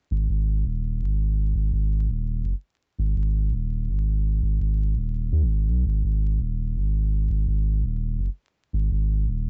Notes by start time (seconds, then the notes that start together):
0.11 G#1
0.29 G#1
0.65 D#1
1.01 G#1
1.55 G#1
1.73 G#1
2.09 D#1
2.45 F#1
2.99 G#1
3.16 G#1
3.52 D#1
3.88 G#1
4.42 G#1
4.60 G#1
4.96 D#1
5.32 D#2
5.42 G#1
5.68 B1
5.86 G#1
6.04 G#1
6.40 D#1
6.76 G#1
7.30 G#1
7.47 G#1
7.83 D#1
8.19 F#1
8.73 G#1
8.91 G#1
9.28 D#1